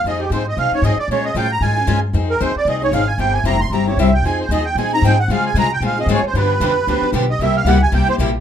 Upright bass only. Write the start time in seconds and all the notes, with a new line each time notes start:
0.04 F2
0.30 G#2
0.57 C3
0.71 muted upright bass stroke
0.82 G#2
0.96 muted upright bass stroke
1.08 A#2
1.35 A2
1.61 G#2
1.87 G2
2.13 F2
2.41 D#2
2.56 muted upright bass stroke
2.65 C2
2.92 G#1
3.18 G1
3.44 F1
3.70 G1
3.97 C2
4.23 F2
4.49 D#2
4.75 A#2
5.02 G#2
5.28 C#3
5.54 C3
5.80 A#2
6.06 G#2
6.22 muted upright bass stroke
6.34 G2
6.60 F2
6.87 D2
7.01 muted upright bass stroke
7.12 B1
7.39 C2
7.65 C#2
7.92 C2
8.18 A#1